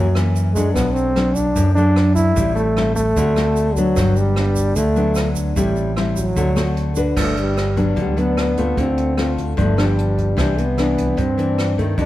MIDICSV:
0, 0, Header, 1, 5, 480
1, 0, Start_track
1, 0, Key_signature, 1, "major"
1, 0, Tempo, 400534
1, 905, Time_signature, 4, 2, 24, 8
1, 14448, End_track
2, 0, Start_track
2, 0, Title_t, "Nylon-string guitar"
2, 0, Program_c, 0, 24
2, 0, Note_on_c, 0, 42, 50
2, 192, Note_on_c, 0, 52, 58
2, 197, Note_on_c, 0, 58, 51
2, 197, Note_on_c, 0, 61, 58
2, 630, Note_off_c, 0, 52, 0
2, 632, Note_off_c, 0, 58, 0
2, 633, Note_off_c, 0, 61, 0
2, 669, Note_on_c, 0, 54, 60
2, 674, Note_on_c, 0, 57, 57
2, 680, Note_on_c, 0, 62, 62
2, 882, Note_off_c, 0, 42, 0
2, 1349, Note_off_c, 0, 54, 0
2, 1352, Note_off_c, 0, 57, 0
2, 1354, Note_off_c, 0, 62, 0
2, 1386, Note_on_c, 0, 54, 50
2, 1395, Note_on_c, 0, 57, 53
2, 1400, Note_on_c, 0, 62, 53
2, 1864, Note_off_c, 0, 54, 0
2, 1866, Note_off_c, 0, 57, 0
2, 1870, Note_off_c, 0, 62, 0
2, 1870, Note_on_c, 0, 42, 54
2, 2118, Note_on_c, 0, 54, 52
2, 2124, Note_on_c, 0, 62, 59
2, 2125, Note_on_c, 0, 57, 53
2, 2794, Note_off_c, 0, 54, 0
2, 2796, Note_off_c, 0, 57, 0
2, 2797, Note_off_c, 0, 62, 0
2, 2804, Note_off_c, 0, 42, 0
2, 2831, Note_on_c, 0, 45, 49
2, 2835, Note_on_c, 0, 55, 48
2, 2838, Note_on_c, 0, 60, 51
2, 2841, Note_on_c, 0, 64, 57
2, 3272, Note_off_c, 0, 55, 0
2, 3274, Note_off_c, 0, 60, 0
2, 3275, Note_off_c, 0, 64, 0
2, 3314, Note_on_c, 0, 55, 51
2, 3323, Note_on_c, 0, 60, 51
2, 3326, Note_on_c, 0, 64, 57
2, 3633, Note_off_c, 0, 55, 0
2, 3635, Note_off_c, 0, 60, 0
2, 3638, Note_off_c, 0, 64, 0
2, 3764, Note_off_c, 0, 45, 0
2, 3800, Note_on_c, 0, 50, 54
2, 3805, Note_on_c, 0, 57, 55
2, 3810, Note_on_c, 0, 60, 52
2, 3811, Note_on_c, 0, 66, 57
2, 3997, Note_off_c, 0, 57, 0
2, 3998, Note_off_c, 0, 60, 0
2, 4000, Note_off_c, 0, 66, 0
2, 4043, Note_on_c, 0, 57, 58
2, 4049, Note_on_c, 0, 60, 53
2, 4050, Note_on_c, 0, 66, 56
2, 4477, Note_off_c, 0, 57, 0
2, 4479, Note_off_c, 0, 60, 0
2, 4480, Note_off_c, 0, 66, 0
2, 4520, Note_on_c, 0, 54, 57
2, 4525, Note_on_c, 0, 59, 51
2, 4531, Note_on_c, 0, 62, 61
2, 4729, Note_off_c, 0, 50, 0
2, 4758, Note_on_c, 0, 43, 52
2, 5195, Note_off_c, 0, 54, 0
2, 5197, Note_off_c, 0, 59, 0
2, 5200, Note_off_c, 0, 62, 0
2, 5245, Note_on_c, 0, 59, 48
2, 5249, Note_on_c, 0, 62, 63
2, 5688, Note_off_c, 0, 43, 0
2, 5713, Note_off_c, 0, 59, 0
2, 5714, Note_off_c, 0, 62, 0
2, 5716, Note_on_c, 0, 50, 56
2, 5945, Note_on_c, 0, 54, 60
2, 5952, Note_on_c, 0, 59, 56
2, 5958, Note_on_c, 0, 62, 62
2, 6627, Note_off_c, 0, 54, 0
2, 6631, Note_off_c, 0, 59, 0
2, 6632, Note_off_c, 0, 62, 0
2, 6647, Note_off_c, 0, 50, 0
2, 6666, Note_on_c, 0, 45, 50
2, 6670, Note_on_c, 0, 55, 53
2, 6674, Note_on_c, 0, 60, 52
2, 6677, Note_on_c, 0, 64, 58
2, 7110, Note_off_c, 0, 55, 0
2, 7111, Note_off_c, 0, 60, 0
2, 7114, Note_off_c, 0, 64, 0
2, 7147, Note_on_c, 0, 55, 50
2, 7152, Note_on_c, 0, 60, 50
2, 7157, Note_on_c, 0, 64, 56
2, 7470, Note_off_c, 0, 55, 0
2, 7471, Note_off_c, 0, 60, 0
2, 7474, Note_off_c, 0, 64, 0
2, 7602, Note_off_c, 0, 45, 0
2, 7628, Note_on_c, 0, 50, 53
2, 7628, Note_on_c, 0, 57, 56
2, 7637, Note_on_c, 0, 66, 56
2, 7638, Note_on_c, 0, 60, 55
2, 7768, Note_off_c, 0, 57, 0
2, 7770, Note_off_c, 0, 60, 0
2, 7773, Note_off_c, 0, 66, 0
2, 7860, Note_on_c, 0, 57, 57
2, 7868, Note_on_c, 0, 60, 57
2, 7873, Note_on_c, 0, 66, 58
2, 8305, Note_off_c, 0, 57, 0
2, 8309, Note_off_c, 0, 60, 0
2, 8312, Note_off_c, 0, 66, 0
2, 8346, Note_on_c, 0, 62, 58
2, 8351, Note_on_c, 0, 66, 54
2, 8358, Note_on_c, 0, 71, 64
2, 8565, Note_off_c, 0, 50, 0
2, 8584, Note_on_c, 0, 43, 52
2, 9029, Note_off_c, 0, 62, 0
2, 9029, Note_off_c, 0, 66, 0
2, 9034, Note_off_c, 0, 71, 0
2, 9303, Note_on_c, 0, 54, 51
2, 9309, Note_on_c, 0, 59, 52
2, 9313, Note_on_c, 0, 62, 63
2, 9521, Note_off_c, 0, 43, 0
2, 9543, Note_on_c, 0, 50, 53
2, 9747, Note_off_c, 0, 54, 0
2, 9750, Note_off_c, 0, 59, 0
2, 9751, Note_off_c, 0, 62, 0
2, 9785, Note_on_c, 0, 54, 57
2, 9788, Note_on_c, 0, 59, 56
2, 9792, Note_on_c, 0, 62, 58
2, 10228, Note_off_c, 0, 54, 0
2, 10228, Note_off_c, 0, 59, 0
2, 10231, Note_off_c, 0, 62, 0
2, 10279, Note_on_c, 0, 57, 57
2, 10283, Note_on_c, 0, 60, 60
2, 10290, Note_on_c, 0, 65, 62
2, 10481, Note_off_c, 0, 50, 0
2, 10519, Note_on_c, 0, 50, 55
2, 10955, Note_off_c, 0, 57, 0
2, 10957, Note_off_c, 0, 60, 0
2, 10958, Note_off_c, 0, 65, 0
2, 10996, Note_on_c, 0, 57, 49
2, 11002, Note_on_c, 0, 60, 54
2, 11009, Note_on_c, 0, 65, 58
2, 11449, Note_off_c, 0, 50, 0
2, 11453, Note_off_c, 0, 57, 0
2, 11456, Note_off_c, 0, 60, 0
2, 11457, Note_off_c, 0, 65, 0
2, 11469, Note_on_c, 0, 43, 57
2, 11475, Note_on_c, 0, 53, 59
2, 11480, Note_on_c, 0, 62, 62
2, 11484, Note_on_c, 0, 59, 55
2, 11672, Note_off_c, 0, 53, 0
2, 11674, Note_off_c, 0, 59, 0
2, 11675, Note_off_c, 0, 62, 0
2, 11704, Note_on_c, 0, 53, 59
2, 11713, Note_on_c, 0, 59, 57
2, 11719, Note_on_c, 0, 62, 65
2, 12387, Note_off_c, 0, 53, 0
2, 12392, Note_off_c, 0, 59, 0
2, 12394, Note_off_c, 0, 62, 0
2, 12406, Note_off_c, 0, 43, 0
2, 12423, Note_on_c, 0, 48, 56
2, 12428, Note_on_c, 0, 52, 60
2, 12434, Note_on_c, 0, 59, 54
2, 12439, Note_on_c, 0, 62, 59
2, 12735, Note_off_c, 0, 52, 0
2, 12740, Note_off_c, 0, 59, 0
2, 12742, Note_off_c, 0, 62, 0
2, 12911, Note_on_c, 0, 52, 51
2, 12920, Note_on_c, 0, 59, 59
2, 12928, Note_on_c, 0, 62, 60
2, 13363, Note_off_c, 0, 48, 0
2, 13386, Note_on_c, 0, 43, 53
2, 13387, Note_off_c, 0, 52, 0
2, 13392, Note_off_c, 0, 59, 0
2, 13394, Note_off_c, 0, 62, 0
2, 13632, Note_on_c, 0, 52, 59
2, 13639, Note_on_c, 0, 62, 57
2, 14072, Note_off_c, 0, 52, 0
2, 14075, Note_off_c, 0, 62, 0
2, 14115, Note_on_c, 0, 51, 55
2, 14122, Note_on_c, 0, 57, 57
2, 14130, Note_on_c, 0, 60, 67
2, 14324, Note_off_c, 0, 43, 0
2, 14352, Note_on_c, 0, 41, 54
2, 14448, Note_off_c, 0, 41, 0
2, 14448, Note_off_c, 0, 51, 0
2, 14448, Note_off_c, 0, 57, 0
2, 14448, Note_off_c, 0, 60, 0
2, 14448, End_track
3, 0, Start_track
3, 0, Title_t, "Trombone"
3, 0, Program_c, 1, 57
3, 0, Note_on_c, 1, 54, 83
3, 291, Note_off_c, 1, 54, 0
3, 643, Note_on_c, 1, 56, 80
3, 874, Note_off_c, 1, 56, 0
3, 881, Note_on_c, 1, 59, 86
3, 1113, Note_on_c, 1, 60, 93
3, 1131, Note_off_c, 1, 59, 0
3, 1611, Note_on_c, 1, 62, 95
3, 1629, Note_off_c, 1, 60, 0
3, 2092, Note_off_c, 1, 62, 0
3, 2100, Note_on_c, 1, 62, 101
3, 2549, Note_off_c, 1, 62, 0
3, 2582, Note_on_c, 1, 64, 100
3, 3030, Note_off_c, 1, 64, 0
3, 3065, Note_on_c, 1, 57, 88
3, 3512, Note_off_c, 1, 57, 0
3, 3544, Note_on_c, 1, 57, 95
3, 4511, Note_on_c, 1, 54, 91
3, 4529, Note_off_c, 1, 57, 0
3, 4998, Note_on_c, 1, 55, 98
3, 5016, Note_off_c, 1, 54, 0
3, 5707, Note_on_c, 1, 57, 97
3, 5725, Note_off_c, 1, 55, 0
3, 6343, Note_off_c, 1, 57, 0
3, 6667, Note_on_c, 1, 55, 84
3, 7113, Note_off_c, 1, 55, 0
3, 7390, Note_on_c, 1, 54, 82
3, 8301, Note_off_c, 1, 54, 0
3, 8628, Note_on_c, 1, 57, 62
3, 8832, Note_off_c, 1, 57, 0
3, 8861, Note_on_c, 1, 55, 76
3, 9516, Note_off_c, 1, 55, 0
3, 9592, Note_on_c, 1, 55, 70
3, 9817, Note_on_c, 1, 59, 86
3, 9835, Note_off_c, 1, 55, 0
3, 10547, Note_on_c, 1, 60, 81
3, 10564, Note_off_c, 1, 59, 0
3, 11247, Note_off_c, 1, 60, 0
3, 11510, Note_on_c, 1, 57, 71
3, 11739, Note_on_c, 1, 55, 83
3, 11757, Note_off_c, 1, 57, 0
3, 12443, Note_off_c, 1, 55, 0
3, 12475, Note_on_c, 1, 55, 75
3, 12709, Note_on_c, 1, 59, 89
3, 12727, Note_off_c, 1, 55, 0
3, 13425, Note_on_c, 1, 60, 84
3, 13443, Note_off_c, 1, 59, 0
3, 14127, Note_off_c, 1, 60, 0
3, 14380, Note_on_c, 1, 62, 78
3, 14448, Note_off_c, 1, 62, 0
3, 14448, End_track
4, 0, Start_track
4, 0, Title_t, "Fingered electric bass"
4, 0, Program_c, 2, 33
4, 0, Note_on_c, 2, 42, 87
4, 856, Note_off_c, 2, 42, 0
4, 902, Note_on_c, 2, 35, 85
4, 1816, Note_off_c, 2, 35, 0
4, 1866, Note_on_c, 2, 42, 83
4, 2778, Note_off_c, 2, 42, 0
4, 2828, Note_on_c, 2, 33, 89
4, 3739, Note_off_c, 2, 33, 0
4, 3793, Note_on_c, 2, 38, 85
4, 4702, Note_off_c, 2, 38, 0
4, 4744, Note_on_c, 2, 31, 89
4, 5657, Note_off_c, 2, 31, 0
4, 5702, Note_on_c, 2, 38, 87
4, 6617, Note_off_c, 2, 38, 0
4, 6661, Note_on_c, 2, 33, 83
4, 7576, Note_off_c, 2, 33, 0
4, 7622, Note_on_c, 2, 38, 84
4, 8536, Note_off_c, 2, 38, 0
4, 8589, Note_on_c, 2, 31, 88
4, 9500, Note_off_c, 2, 31, 0
4, 9547, Note_on_c, 2, 38, 84
4, 10459, Note_off_c, 2, 38, 0
4, 10515, Note_on_c, 2, 38, 82
4, 11423, Note_off_c, 2, 38, 0
4, 11472, Note_on_c, 2, 31, 87
4, 12382, Note_off_c, 2, 31, 0
4, 12434, Note_on_c, 2, 36, 93
4, 13343, Note_off_c, 2, 36, 0
4, 13390, Note_on_c, 2, 43, 92
4, 14302, Note_off_c, 2, 43, 0
4, 14356, Note_on_c, 2, 41, 91
4, 14448, Note_off_c, 2, 41, 0
4, 14448, End_track
5, 0, Start_track
5, 0, Title_t, "Drums"
5, 181, Note_on_c, 9, 37, 53
5, 181, Note_on_c, 9, 42, 25
5, 197, Note_on_c, 9, 82, 25
5, 301, Note_off_c, 9, 37, 0
5, 301, Note_off_c, 9, 42, 0
5, 317, Note_off_c, 9, 82, 0
5, 423, Note_on_c, 9, 42, 40
5, 429, Note_on_c, 9, 82, 50
5, 542, Note_off_c, 9, 42, 0
5, 549, Note_off_c, 9, 82, 0
5, 665, Note_on_c, 9, 36, 22
5, 666, Note_on_c, 9, 42, 27
5, 672, Note_on_c, 9, 82, 54
5, 784, Note_off_c, 9, 36, 0
5, 786, Note_off_c, 9, 42, 0
5, 792, Note_off_c, 9, 82, 0
5, 906, Note_on_c, 9, 36, 53
5, 907, Note_on_c, 9, 37, 53
5, 907, Note_on_c, 9, 42, 39
5, 912, Note_on_c, 9, 82, 57
5, 1026, Note_off_c, 9, 36, 0
5, 1027, Note_off_c, 9, 37, 0
5, 1027, Note_off_c, 9, 42, 0
5, 1032, Note_off_c, 9, 82, 0
5, 1146, Note_on_c, 9, 42, 25
5, 1157, Note_on_c, 9, 82, 25
5, 1266, Note_off_c, 9, 42, 0
5, 1277, Note_off_c, 9, 82, 0
5, 1390, Note_on_c, 9, 37, 57
5, 1390, Note_on_c, 9, 42, 40
5, 1509, Note_off_c, 9, 37, 0
5, 1509, Note_off_c, 9, 42, 0
5, 1627, Note_on_c, 9, 36, 23
5, 1627, Note_on_c, 9, 42, 26
5, 1627, Note_on_c, 9, 82, 59
5, 1747, Note_off_c, 9, 36, 0
5, 1747, Note_off_c, 9, 42, 0
5, 1747, Note_off_c, 9, 82, 0
5, 1865, Note_on_c, 9, 42, 40
5, 1867, Note_on_c, 9, 36, 51
5, 1870, Note_on_c, 9, 82, 57
5, 1985, Note_off_c, 9, 42, 0
5, 1987, Note_off_c, 9, 36, 0
5, 1989, Note_off_c, 9, 82, 0
5, 2108, Note_on_c, 9, 42, 25
5, 2122, Note_on_c, 9, 82, 25
5, 2228, Note_off_c, 9, 42, 0
5, 2241, Note_off_c, 9, 82, 0
5, 2351, Note_on_c, 9, 37, 54
5, 2351, Note_on_c, 9, 42, 41
5, 2471, Note_off_c, 9, 37, 0
5, 2471, Note_off_c, 9, 42, 0
5, 2590, Note_on_c, 9, 82, 59
5, 2591, Note_on_c, 9, 36, 23
5, 2591, Note_on_c, 9, 42, 26
5, 2710, Note_off_c, 9, 36, 0
5, 2710, Note_off_c, 9, 42, 0
5, 2710, Note_off_c, 9, 82, 0
5, 2831, Note_on_c, 9, 36, 55
5, 2832, Note_on_c, 9, 42, 37
5, 2833, Note_on_c, 9, 82, 57
5, 2951, Note_off_c, 9, 36, 0
5, 2952, Note_off_c, 9, 42, 0
5, 2953, Note_off_c, 9, 82, 0
5, 3074, Note_on_c, 9, 42, 23
5, 3075, Note_on_c, 9, 82, 23
5, 3194, Note_off_c, 9, 42, 0
5, 3195, Note_off_c, 9, 82, 0
5, 3314, Note_on_c, 9, 37, 53
5, 3314, Note_on_c, 9, 42, 35
5, 3434, Note_off_c, 9, 37, 0
5, 3434, Note_off_c, 9, 42, 0
5, 3550, Note_on_c, 9, 82, 54
5, 3554, Note_on_c, 9, 36, 23
5, 3558, Note_on_c, 9, 42, 24
5, 3670, Note_off_c, 9, 82, 0
5, 3674, Note_off_c, 9, 36, 0
5, 3678, Note_off_c, 9, 42, 0
5, 3793, Note_on_c, 9, 36, 54
5, 3793, Note_on_c, 9, 42, 37
5, 3797, Note_on_c, 9, 82, 60
5, 3912, Note_off_c, 9, 42, 0
5, 3913, Note_off_c, 9, 36, 0
5, 3917, Note_off_c, 9, 82, 0
5, 4028, Note_on_c, 9, 37, 57
5, 4028, Note_on_c, 9, 42, 27
5, 4031, Note_on_c, 9, 82, 26
5, 4148, Note_off_c, 9, 37, 0
5, 4148, Note_off_c, 9, 42, 0
5, 4151, Note_off_c, 9, 82, 0
5, 4268, Note_on_c, 9, 82, 47
5, 4271, Note_on_c, 9, 42, 43
5, 4388, Note_off_c, 9, 82, 0
5, 4391, Note_off_c, 9, 42, 0
5, 4510, Note_on_c, 9, 36, 22
5, 4510, Note_on_c, 9, 42, 27
5, 4515, Note_on_c, 9, 82, 56
5, 4630, Note_off_c, 9, 36, 0
5, 4630, Note_off_c, 9, 42, 0
5, 4635, Note_off_c, 9, 82, 0
5, 4749, Note_on_c, 9, 82, 54
5, 4750, Note_on_c, 9, 36, 55
5, 4750, Note_on_c, 9, 37, 58
5, 4750, Note_on_c, 9, 42, 41
5, 4869, Note_off_c, 9, 82, 0
5, 4870, Note_off_c, 9, 36, 0
5, 4870, Note_off_c, 9, 37, 0
5, 4870, Note_off_c, 9, 42, 0
5, 4985, Note_on_c, 9, 42, 24
5, 4987, Note_on_c, 9, 82, 24
5, 5105, Note_off_c, 9, 42, 0
5, 5107, Note_off_c, 9, 82, 0
5, 5226, Note_on_c, 9, 37, 53
5, 5226, Note_on_c, 9, 42, 41
5, 5346, Note_off_c, 9, 37, 0
5, 5346, Note_off_c, 9, 42, 0
5, 5462, Note_on_c, 9, 42, 26
5, 5464, Note_on_c, 9, 82, 57
5, 5466, Note_on_c, 9, 36, 22
5, 5582, Note_off_c, 9, 42, 0
5, 5584, Note_off_c, 9, 82, 0
5, 5586, Note_off_c, 9, 36, 0
5, 5703, Note_on_c, 9, 82, 59
5, 5707, Note_on_c, 9, 36, 49
5, 5710, Note_on_c, 9, 42, 40
5, 5823, Note_off_c, 9, 82, 0
5, 5827, Note_off_c, 9, 36, 0
5, 5830, Note_off_c, 9, 42, 0
5, 5943, Note_on_c, 9, 82, 26
5, 5944, Note_on_c, 9, 42, 26
5, 6062, Note_off_c, 9, 82, 0
5, 6064, Note_off_c, 9, 42, 0
5, 6169, Note_on_c, 9, 82, 51
5, 6184, Note_on_c, 9, 37, 56
5, 6184, Note_on_c, 9, 42, 40
5, 6289, Note_off_c, 9, 82, 0
5, 6304, Note_off_c, 9, 37, 0
5, 6304, Note_off_c, 9, 42, 0
5, 6419, Note_on_c, 9, 82, 62
5, 6425, Note_on_c, 9, 42, 25
5, 6426, Note_on_c, 9, 36, 21
5, 6539, Note_off_c, 9, 82, 0
5, 6544, Note_off_c, 9, 42, 0
5, 6546, Note_off_c, 9, 36, 0
5, 6666, Note_on_c, 9, 42, 38
5, 6667, Note_on_c, 9, 36, 54
5, 6671, Note_on_c, 9, 82, 60
5, 6786, Note_off_c, 9, 36, 0
5, 6786, Note_off_c, 9, 42, 0
5, 6791, Note_off_c, 9, 82, 0
5, 6906, Note_on_c, 9, 82, 26
5, 6908, Note_on_c, 9, 42, 23
5, 7026, Note_off_c, 9, 82, 0
5, 7028, Note_off_c, 9, 42, 0
5, 7149, Note_on_c, 9, 37, 52
5, 7149, Note_on_c, 9, 42, 38
5, 7269, Note_off_c, 9, 37, 0
5, 7269, Note_off_c, 9, 42, 0
5, 7387, Note_on_c, 9, 36, 22
5, 7387, Note_on_c, 9, 42, 24
5, 7388, Note_on_c, 9, 82, 57
5, 7507, Note_off_c, 9, 36, 0
5, 7507, Note_off_c, 9, 42, 0
5, 7508, Note_off_c, 9, 82, 0
5, 7627, Note_on_c, 9, 42, 36
5, 7628, Note_on_c, 9, 36, 52
5, 7629, Note_on_c, 9, 82, 59
5, 7746, Note_off_c, 9, 42, 0
5, 7748, Note_off_c, 9, 36, 0
5, 7749, Note_off_c, 9, 82, 0
5, 7865, Note_on_c, 9, 82, 26
5, 7866, Note_on_c, 9, 37, 53
5, 7866, Note_on_c, 9, 42, 25
5, 7985, Note_off_c, 9, 82, 0
5, 7986, Note_off_c, 9, 37, 0
5, 7986, Note_off_c, 9, 42, 0
5, 8108, Note_on_c, 9, 42, 41
5, 8228, Note_off_c, 9, 42, 0
5, 8336, Note_on_c, 9, 82, 56
5, 8349, Note_on_c, 9, 36, 21
5, 8350, Note_on_c, 9, 42, 25
5, 8456, Note_off_c, 9, 82, 0
5, 8469, Note_off_c, 9, 36, 0
5, 8470, Note_off_c, 9, 42, 0
5, 8589, Note_on_c, 9, 36, 59
5, 8589, Note_on_c, 9, 37, 59
5, 8589, Note_on_c, 9, 49, 61
5, 8709, Note_off_c, 9, 36, 0
5, 8709, Note_off_c, 9, 37, 0
5, 8709, Note_off_c, 9, 49, 0
5, 8831, Note_on_c, 9, 42, 42
5, 8951, Note_off_c, 9, 42, 0
5, 9074, Note_on_c, 9, 37, 54
5, 9074, Note_on_c, 9, 42, 40
5, 9194, Note_off_c, 9, 37, 0
5, 9194, Note_off_c, 9, 42, 0
5, 9308, Note_on_c, 9, 42, 43
5, 9310, Note_on_c, 9, 36, 25
5, 9428, Note_off_c, 9, 42, 0
5, 9430, Note_off_c, 9, 36, 0
5, 9545, Note_on_c, 9, 42, 53
5, 9550, Note_on_c, 9, 36, 55
5, 9665, Note_off_c, 9, 42, 0
5, 9670, Note_off_c, 9, 36, 0
5, 9795, Note_on_c, 9, 42, 43
5, 9915, Note_off_c, 9, 42, 0
5, 10035, Note_on_c, 9, 37, 61
5, 10035, Note_on_c, 9, 42, 41
5, 10155, Note_off_c, 9, 37, 0
5, 10155, Note_off_c, 9, 42, 0
5, 10272, Note_on_c, 9, 36, 23
5, 10272, Note_on_c, 9, 42, 42
5, 10392, Note_off_c, 9, 36, 0
5, 10392, Note_off_c, 9, 42, 0
5, 10515, Note_on_c, 9, 36, 57
5, 10517, Note_on_c, 9, 42, 55
5, 10635, Note_off_c, 9, 36, 0
5, 10637, Note_off_c, 9, 42, 0
5, 10757, Note_on_c, 9, 42, 38
5, 10877, Note_off_c, 9, 42, 0
5, 10996, Note_on_c, 9, 37, 55
5, 10996, Note_on_c, 9, 42, 38
5, 11116, Note_off_c, 9, 37, 0
5, 11116, Note_off_c, 9, 42, 0
5, 11236, Note_on_c, 9, 36, 23
5, 11240, Note_on_c, 9, 42, 40
5, 11356, Note_off_c, 9, 36, 0
5, 11360, Note_off_c, 9, 42, 0
5, 11478, Note_on_c, 9, 36, 55
5, 11483, Note_on_c, 9, 42, 55
5, 11598, Note_off_c, 9, 36, 0
5, 11603, Note_off_c, 9, 42, 0
5, 11722, Note_on_c, 9, 37, 58
5, 11722, Note_on_c, 9, 42, 41
5, 11842, Note_off_c, 9, 37, 0
5, 11842, Note_off_c, 9, 42, 0
5, 11964, Note_on_c, 9, 42, 42
5, 12084, Note_off_c, 9, 42, 0
5, 12197, Note_on_c, 9, 36, 25
5, 12203, Note_on_c, 9, 42, 42
5, 12317, Note_off_c, 9, 36, 0
5, 12323, Note_off_c, 9, 42, 0
5, 12436, Note_on_c, 9, 36, 56
5, 12438, Note_on_c, 9, 37, 57
5, 12438, Note_on_c, 9, 42, 59
5, 12556, Note_off_c, 9, 36, 0
5, 12558, Note_off_c, 9, 37, 0
5, 12558, Note_off_c, 9, 42, 0
5, 12680, Note_on_c, 9, 42, 43
5, 12800, Note_off_c, 9, 42, 0
5, 12916, Note_on_c, 9, 37, 53
5, 12916, Note_on_c, 9, 42, 44
5, 13036, Note_off_c, 9, 37, 0
5, 13036, Note_off_c, 9, 42, 0
5, 13155, Note_on_c, 9, 36, 25
5, 13158, Note_on_c, 9, 42, 45
5, 13275, Note_off_c, 9, 36, 0
5, 13278, Note_off_c, 9, 42, 0
5, 13394, Note_on_c, 9, 36, 51
5, 13398, Note_on_c, 9, 42, 55
5, 13514, Note_off_c, 9, 36, 0
5, 13517, Note_off_c, 9, 42, 0
5, 13642, Note_on_c, 9, 42, 45
5, 13762, Note_off_c, 9, 42, 0
5, 13882, Note_on_c, 9, 37, 57
5, 13882, Note_on_c, 9, 42, 43
5, 14002, Note_off_c, 9, 37, 0
5, 14002, Note_off_c, 9, 42, 0
5, 14116, Note_on_c, 9, 36, 25
5, 14123, Note_on_c, 9, 42, 41
5, 14236, Note_off_c, 9, 36, 0
5, 14243, Note_off_c, 9, 42, 0
5, 14356, Note_on_c, 9, 36, 56
5, 14360, Note_on_c, 9, 42, 55
5, 14448, Note_off_c, 9, 36, 0
5, 14448, Note_off_c, 9, 42, 0
5, 14448, End_track
0, 0, End_of_file